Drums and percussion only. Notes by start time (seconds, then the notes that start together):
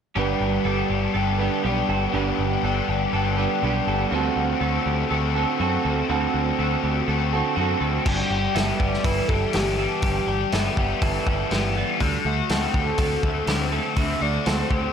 8.06 kick, crash
8.56 snare, open hi-hat
8.80 kick
8.94 snare
9.04 kick, open hi-hat
9.29 kick
9.53 snare, open hi-hat
10.02 kick, open hi-hat
10.52 snare, open hi-hat
10.77 kick
11.02 kick, open hi-hat
11.27 kick
11.51 snare, open hi-hat
12.00 kick, open hi-hat
12.49 snare, open hi-hat
12.74 kick
12.98 kick, open hi-hat
13.23 kick
13.47 snare, open hi-hat
13.96 kick, open hi-hat
14.46 snare, open hi-hat
14.71 kick